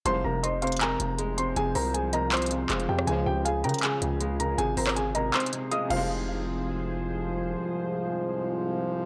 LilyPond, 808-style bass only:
\new Staff \with { instrumentName = "808-style bass" } { \clef bass \time 4/4 \key f \minor \tempo 4 = 159 f,,8 f,,2 f,,4. | f,,8 c,2~ c,8 f,,8 f,8 | des,8 des,4 des16 r8. des,4. | aes,,8 aes,,4. r4. f,,8~ |
f,,1 | r1 | }